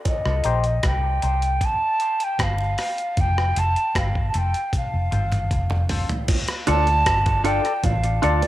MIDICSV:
0, 0, Header, 1, 7, 480
1, 0, Start_track
1, 0, Tempo, 778210
1, 37, Time_signature, 4, 2, 24, 8
1, 5226, End_track
2, 0, Start_track
2, 0, Title_t, "Flute"
2, 0, Program_c, 0, 73
2, 45, Note_on_c, 0, 75, 90
2, 527, Note_on_c, 0, 79, 95
2, 536, Note_off_c, 0, 75, 0
2, 1015, Note_on_c, 0, 81, 103
2, 1024, Note_off_c, 0, 79, 0
2, 1378, Note_on_c, 0, 79, 96
2, 1388, Note_off_c, 0, 81, 0
2, 1494, Note_on_c, 0, 77, 97
2, 1503, Note_off_c, 0, 79, 0
2, 1971, Note_on_c, 0, 79, 100
2, 1981, Note_off_c, 0, 77, 0
2, 2210, Note_on_c, 0, 81, 105
2, 2219, Note_off_c, 0, 79, 0
2, 2451, Note_on_c, 0, 77, 91
2, 2461, Note_off_c, 0, 81, 0
2, 2640, Note_off_c, 0, 77, 0
2, 2644, Note_on_c, 0, 81, 58
2, 2697, Note_on_c, 0, 79, 81
2, 2707, Note_off_c, 0, 81, 0
2, 2927, Note_off_c, 0, 79, 0
2, 2935, Note_on_c, 0, 77, 82
2, 3621, Note_off_c, 0, 77, 0
2, 4122, Note_on_c, 0, 81, 125
2, 4574, Note_off_c, 0, 81, 0
2, 4596, Note_on_c, 0, 79, 100
2, 4835, Note_on_c, 0, 77, 99
2, 4844, Note_off_c, 0, 79, 0
2, 5076, Note_on_c, 0, 74, 88
2, 5085, Note_off_c, 0, 77, 0
2, 5226, Note_off_c, 0, 74, 0
2, 5226, End_track
3, 0, Start_track
3, 0, Title_t, "Synth stab"
3, 0, Program_c, 1, 62
3, 275, Note_on_c, 1, 63, 93
3, 279, Note_on_c, 1, 67, 83
3, 283, Note_on_c, 1, 72, 111
3, 397, Note_off_c, 1, 63, 0
3, 399, Note_off_c, 1, 67, 0
3, 401, Note_off_c, 1, 72, 0
3, 756, Note_on_c, 1, 63, 83
3, 759, Note_on_c, 1, 67, 78
3, 763, Note_on_c, 1, 72, 95
3, 877, Note_off_c, 1, 63, 0
3, 879, Note_off_c, 1, 67, 0
3, 881, Note_off_c, 1, 72, 0
3, 1238, Note_on_c, 1, 63, 91
3, 1241, Note_on_c, 1, 67, 84
3, 1245, Note_on_c, 1, 72, 105
3, 1358, Note_off_c, 1, 63, 0
3, 1360, Note_off_c, 1, 67, 0
3, 1362, Note_off_c, 1, 72, 0
3, 1714, Note_on_c, 1, 63, 92
3, 1718, Note_on_c, 1, 67, 79
3, 1721, Note_on_c, 1, 72, 101
3, 1836, Note_off_c, 1, 63, 0
3, 1838, Note_off_c, 1, 67, 0
3, 1840, Note_off_c, 1, 72, 0
3, 2198, Note_on_c, 1, 65, 99
3, 2202, Note_on_c, 1, 69, 86
3, 2204, Note_on_c, 1, 72, 102
3, 2318, Note_off_c, 1, 65, 0
3, 2320, Note_off_c, 1, 69, 0
3, 2322, Note_off_c, 1, 72, 0
3, 2675, Note_on_c, 1, 65, 92
3, 2680, Note_on_c, 1, 69, 88
3, 2683, Note_on_c, 1, 72, 95
3, 2792, Note_off_c, 1, 69, 0
3, 2793, Note_off_c, 1, 72, 0
3, 2797, Note_off_c, 1, 65, 0
3, 2800, Note_on_c, 1, 69, 44
3, 2801, Note_on_c, 1, 72, 47
3, 2846, Note_off_c, 1, 69, 0
3, 2847, Note_off_c, 1, 72, 0
3, 3154, Note_on_c, 1, 65, 97
3, 3158, Note_on_c, 1, 69, 82
3, 3161, Note_on_c, 1, 72, 97
3, 3276, Note_off_c, 1, 65, 0
3, 3278, Note_off_c, 1, 69, 0
3, 3280, Note_off_c, 1, 72, 0
3, 3635, Note_on_c, 1, 65, 85
3, 3639, Note_on_c, 1, 69, 83
3, 3642, Note_on_c, 1, 72, 102
3, 3757, Note_off_c, 1, 65, 0
3, 3759, Note_off_c, 1, 69, 0
3, 3760, Note_off_c, 1, 72, 0
3, 4117, Note_on_c, 1, 65, 100
3, 4120, Note_on_c, 1, 69, 87
3, 4123, Note_on_c, 1, 74, 96
3, 4237, Note_off_c, 1, 65, 0
3, 4239, Note_off_c, 1, 69, 0
3, 4240, Note_off_c, 1, 74, 0
3, 4594, Note_on_c, 1, 65, 94
3, 4597, Note_on_c, 1, 69, 89
3, 4601, Note_on_c, 1, 74, 106
3, 4711, Note_off_c, 1, 74, 0
3, 4712, Note_off_c, 1, 69, 0
3, 4716, Note_off_c, 1, 65, 0
3, 4719, Note_on_c, 1, 69, 41
3, 4719, Note_on_c, 1, 74, 48
3, 4766, Note_off_c, 1, 69, 0
3, 4766, Note_off_c, 1, 74, 0
3, 5071, Note_on_c, 1, 65, 105
3, 5075, Note_on_c, 1, 69, 95
3, 5079, Note_on_c, 1, 74, 106
3, 5194, Note_off_c, 1, 65, 0
3, 5196, Note_off_c, 1, 69, 0
3, 5198, Note_off_c, 1, 74, 0
3, 5226, End_track
4, 0, Start_track
4, 0, Title_t, "Clean electric guitar"
4, 0, Program_c, 2, 27
4, 4114, Note_on_c, 2, 62, 83
4, 4117, Note_on_c, 2, 65, 81
4, 4122, Note_on_c, 2, 69, 87
4, 4236, Note_off_c, 2, 62, 0
4, 4238, Note_off_c, 2, 65, 0
4, 4240, Note_off_c, 2, 69, 0
4, 4590, Note_on_c, 2, 62, 75
4, 4592, Note_on_c, 2, 65, 79
4, 4596, Note_on_c, 2, 69, 92
4, 4706, Note_off_c, 2, 69, 0
4, 4711, Note_off_c, 2, 65, 0
4, 4714, Note_off_c, 2, 62, 0
4, 5073, Note_on_c, 2, 62, 88
4, 5077, Note_on_c, 2, 65, 88
4, 5080, Note_on_c, 2, 69, 104
4, 5195, Note_off_c, 2, 62, 0
4, 5197, Note_off_c, 2, 65, 0
4, 5199, Note_off_c, 2, 69, 0
4, 5226, End_track
5, 0, Start_track
5, 0, Title_t, "Fingered electric bass"
5, 0, Program_c, 3, 33
5, 159, Note_on_c, 3, 36, 94
5, 264, Note_off_c, 3, 36, 0
5, 278, Note_on_c, 3, 34, 86
5, 491, Note_off_c, 3, 34, 0
5, 517, Note_on_c, 3, 36, 79
5, 730, Note_off_c, 3, 36, 0
5, 760, Note_on_c, 3, 36, 83
5, 972, Note_off_c, 3, 36, 0
5, 1478, Note_on_c, 3, 31, 78
5, 1691, Note_off_c, 3, 31, 0
5, 1962, Note_on_c, 3, 29, 104
5, 2173, Note_off_c, 3, 29, 0
5, 2202, Note_on_c, 3, 29, 94
5, 2308, Note_off_c, 3, 29, 0
5, 2440, Note_on_c, 3, 31, 82
5, 2652, Note_off_c, 3, 31, 0
5, 2683, Note_on_c, 3, 29, 92
5, 2788, Note_off_c, 3, 29, 0
5, 3044, Note_on_c, 3, 29, 59
5, 3147, Note_off_c, 3, 29, 0
5, 3162, Note_on_c, 3, 31, 89
5, 3373, Note_off_c, 3, 31, 0
5, 3401, Note_on_c, 3, 29, 82
5, 3720, Note_off_c, 3, 29, 0
5, 4122, Note_on_c, 3, 38, 99
5, 4333, Note_off_c, 3, 38, 0
5, 4359, Note_on_c, 3, 31, 82
5, 4679, Note_off_c, 3, 31, 0
5, 4837, Note_on_c, 3, 33, 99
5, 5050, Note_off_c, 3, 33, 0
5, 5081, Note_on_c, 3, 38, 81
5, 5187, Note_off_c, 3, 38, 0
5, 5226, End_track
6, 0, Start_track
6, 0, Title_t, "Muted clean electric guitar strokes"
6, 4713, Note_on_c, 9, 29, 53
6, 4775, Note_off_c, 9, 29, 0
6, 5226, End_track
7, 0, Start_track
7, 0, Title_t, "Drums"
7, 31, Note_on_c, 9, 60, 59
7, 34, Note_on_c, 9, 42, 85
7, 35, Note_on_c, 9, 36, 117
7, 93, Note_off_c, 9, 60, 0
7, 95, Note_off_c, 9, 42, 0
7, 96, Note_off_c, 9, 36, 0
7, 158, Note_on_c, 9, 37, 55
7, 220, Note_off_c, 9, 37, 0
7, 270, Note_on_c, 9, 42, 76
7, 332, Note_off_c, 9, 42, 0
7, 394, Note_on_c, 9, 42, 42
7, 455, Note_off_c, 9, 42, 0
7, 513, Note_on_c, 9, 42, 94
7, 514, Note_on_c, 9, 36, 112
7, 515, Note_on_c, 9, 37, 99
7, 574, Note_off_c, 9, 42, 0
7, 576, Note_off_c, 9, 36, 0
7, 577, Note_off_c, 9, 37, 0
7, 755, Note_on_c, 9, 42, 65
7, 817, Note_off_c, 9, 42, 0
7, 878, Note_on_c, 9, 42, 52
7, 940, Note_off_c, 9, 42, 0
7, 993, Note_on_c, 9, 36, 90
7, 995, Note_on_c, 9, 42, 84
7, 995, Note_on_c, 9, 60, 58
7, 1055, Note_off_c, 9, 36, 0
7, 1056, Note_off_c, 9, 42, 0
7, 1057, Note_off_c, 9, 60, 0
7, 1233, Note_on_c, 9, 42, 50
7, 1295, Note_off_c, 9, 42, 0
7, 1358, Note_on_c, 9, 42, 52
7, 1360, Note_on_c, 9, 60, 65
7, 1419, Note_off_c, 9, 42, 0
7, 1422, Note_off_c, 9, 60, 0
7, 1475, Note_on_c, 9, 36, 94
7, 1475, Note_on_c, 9, 42, 79
7, 1479, Note_on_c, 9, 37, 100
7, 1536, Note_off_c, 9, 36, 0
7, 1537, Note_off_c, 9, 42, 0
7, 1541, Note_off_c, 9, 37, 0
7, 1594, Note_on_c, 9, 60, 71
7, 1656, Note_off_c, 9, 60, 0
7, 1714, Note_on_c, 9, 46, 57
7, 1719, Note_on_c, 9, 37, 51
7, 1719, Note_on_c, 9, 61, 83
7, 1776, Note_off_c, 9, 46, 0
7, 1781, Note_off_c, 9, 37, 0
7, 1781, Note_off_c, 9, 61, 0
7, 1839, Note_on_c, 9, 42, 48
7, 1901, Note_off_c, 9, 42, 0
7, 1955, Note_on_c, 9, 42, 92
7, 1957, Note_on_c, 9, 36, 115
7, 1961, Note_on_c, 9, 60, 57
7, 2017, Note_off_c, 9, 42, 0
7, 2019, Note_off_c, 9, 36, 0
7, 2023, Note_off_c, 9, 60, 0
7, 2085, Note_on_c, 9, 37, 65
7, 2147, Note_off_c, 9, 37, 0
7, 2198, Note_on_c, 9, 42, 77
7, 2260, Note_off_c, 9, 42, 0
7, 2321, Note_on_c, 9, 42, 43
7, 2383, Note_off_c, 9, 42, 0
7, 2438, Note_on_c, 9, 36, 118
7, 2440, Note_on_c, 9, 42, 86
7, 2442, Note_on_c, 9, 37, 103
7, 2500, Note_off_c, 9, 36, 0
7, 2501, Note_off_c, 9, 42, 0
7, 2504, Note_off_c, 9, 37, 0
7, 2562, Note_on_c, 9, 36, 94
7, 2624, Note_off_c, 9, 36, 0
7, 2677, Note_on_c, 9, 42, 67
7, 2679, Note_on_c, 9, 61, 70
7, 2738, Note_off_c, 9, 42, 0
7, 2740, Note_off_c, 9, 61, 0
7, 2802, Note_on_c, 9, 42, 51
7, 2864, Note_off_c, 9, 42, 0
7, 2917, Note_on_c, 9, 36, 88
7, 2918, Note_on_c, 9, 42, 86
7, 2918, Note_on_c, 9, 48, 51
7, 2919, Note_on_c, 9, 60, 55
7, 2978, Note_off_c, 9, 36, 0
7, 2980, Note_off_c, 9, 42, 0
7, 2980, Note_off_c, 9, 48, 0
7, 2981, Note_off_c, 9, 60, 0
7, 3159, Note_on_c, 9, 42, 51
7, 3159, Note_on_c, 9, 47, 58
7, 3220, Note_off_c, 9, 42, 0
7, 3220, Note_off_c, 9, 47, 0
7, 3279, Note_on_c, 9, 60, 64
7, 3282, Note_on_c, 9, 47, 63
7, 3283, Note_on_c, 9, 42, 54
7, 3340, Note_off_c, 9, 60, 0
7, 3344, Note_off_c, 9, 47, 0
7, 3345, Note_off_c, 9, 42, 0
7, 3397, Note_on_c, 9, 36, 99
7, 3398, Note_on_c, 9, 42, 75
7, 3459, Note_off_c, 9, 36, 0
7, 3460, Note_off_c, 9, 42, 0
7, 3514, Note_on_c, 9, 60, 70
7, 3519, Note_on_c, 9, 45, 62
7, 3576, Note_off_c, 9, 60, 0
7, 3581, Note_off_c, 9, 45, 0
7, 3633, Note_on_c, 9, 61, 73
7, 3635, Note_on_c, 9, 46, 59
7, 3636, Note_on_c, 9, 43, 89
7, 3695, Note_off_c, 9, 61, 0
7, 3696, Note_off_c, 9, 46, 0
7, 3698, Note_off_c, 9, 43, 0
7, 3759, Note_on_c, 9, 43, 87
7, 3760, Note_on_c, 9, 42, 48
7, 3820, Note_off_c, 9, 43, 0
7, 3821, Note_off_c, 9, 42, 0
7, 3875, Note_on_c, 9, 42, 99
7, 3875, Note_on_c, 9, 49, 95
7, 3875, Note_on_c, 9, 60, 65
7, 3877, Note_on_c, 9, 36, 127
7, 3936, Note_off_c, 9, 42, 0
7, 3937, Note_off_c, 9, 49, 0
7, 3937, Note_off_c, 9, 60, 0
7, 3939, Note_off_c, 9, 36, 0
7, 3995, Note_on_c, 9, 42, 64
7, 4000, Note_on_c, 9, 37, 61
7, 4057, Note_off_c, 9, 42, 0
7, 4062, Note_off_c, 9, 37, 0
7, 4114, Note_on_c, 9, 42, 82
7, 4114, Note_on_c, 9, 60, 52
7, 4176, Note_off_c, 9, 42, 0
7, 4176, Note_off_c, 9, 60, 0
7, 4238, Note_on_c, 9, 42, 34
7, 4299, Note_off_c, 9, 42, 0
7, 4356, Note_on_c, 9, 42, 96
7, 4357, Note_on_c, 9, 36, 122
7, 4358, Note_on_c, 9, 37, 106
7, 4418, Note_off_c, 9, 42, 0
7, 4419, Note_off_c, 9, 36, 0
7, 4420, Note_off_c, 9, 37, 0
7, 4477, Note_on_c, 9, 42, 55
7, 4481, Note_on_c, 9, 36, 99
7, 4539, Note_off_c, 9, 42, 0
7, 4542, Note_off_c, 9, 36, 0
7, 4593, Note_on_c, 9, 42, 73
7, 4655, Note_off_c, 9, 42, 0
7, 4718, Note_on_c, 9, 42, 36
7, 4780, Note_off_c, 9, 42, 0
7, 4834, Note_on_c, 9, 36, 115
7, 4834, Note_on_c, 9, 42, 86
7, 4838, Note_on_c, 9, 60, 61
7, 4896, Note_off_c, 9, 36, 0
7, 4896, Note_off_c, 9, 42, 0
7, 4900, Note_off_c, 9, 60, 0
7, 4957, Note_on_c, 9, 42, 46
7, 5019, Note_off_c, 9, 42, 0
7, 5076, Note_on_c, 9, 42, 53
7, 5138, Note_off_c, 9, 42, 0
7, 5196, Note_on_c, 9, 42, 39
7, 5197, Note_on_c, 9, 60, 68
7, 5226, Note_off_c, 9, 42, 0
7, 5226, Note_off_c, 9, 60, 0
7, 5226, End_track
0, 0, End_of_file